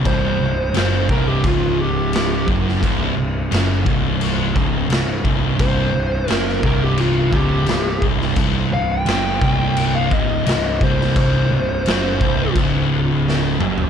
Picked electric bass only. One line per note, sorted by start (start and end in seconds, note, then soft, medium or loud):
0.06 0.38 C1 medium
0.41 0.73 C1 medium
0.76 1.07 F#1 loud
1.10 1.42 C1 loud
1.44 2.44 C#1 medium
2.48 2.80 F#1 loud
2.83 3.15 C1 loud
3.17 3.49 C1 medium
3.52 3.84 F#1 medium
3.87 4.52 C1 loud
4.56 4.88 C#1 loud
4.90 5.23 C1 medium
5.25 5.57 C1 loud
5.60 5.92 C1 medium
5.96 6.27 C1 medium
6.30 6.62 F#1 loud
6.63 7.29 C1 loud
7.33 7.65 C#1 medium
7.69 8.01 C1 medium
8.02 8.35 C1 loud
8.37 8.70 C1 loud
8.72 9.05 C1 medium
9.07 9.39 F#1 loud
9.42 10.08 C1 loud
10.12 10.44 C#1 loud
10.47 10.79 C1 medium
10.82 11.14 C1 loud
11.17 11.49 C1 medium
11.52 11.84 C1 medium
11.87 12.19 F#1 medium
12.21 12.53 C1 loud
12.56 13.57 C#1 loud
13.61 13.90 F#1 loud